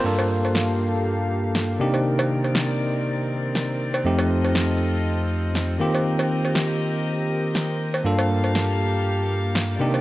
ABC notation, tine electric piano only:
X:1
M:4/4
L:1/8
Q:"Swing 16ths" 1/4=120
K:Gm
V:1 name="Tine electric piano"
[G,,B,DFA]6- [G,,B,DFA] [C,B,DEG]- | [C,B,DEG]8 | [F,,A,CEG]6- [F,,A,CEG] [E,B,CFG]- | [E,B,CFG]8 |
[G,,B,DFA]6- [G,,B,DFA] [C,B,DEG] |]